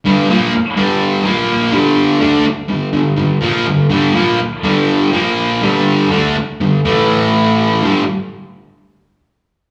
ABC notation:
X:1
M:4/4
L:1/8
Q:1/4=123
K:Gm
V:1 name="Distorted electric guitar" clef=bass
[G,,D,G,] [B,,F,B,] z [G,,D,G,]2 [B,,F,B,]2 [G,,D,G,]- | [G,,D,G,] [D,A,D] z [G,,D,] [G,,D,] [G,,D,] [B,,F,B,] [G,,D,] | [G,,D,G,] [B,,F,B,] z [G,,D,G,]2 [B,,F,B,]2 [G,,D,G,]- | [G,,D,G,] [D,A,D] z [G,,D,] [A,,=E,A,]4 |
[G,,D,G,] z6 z |]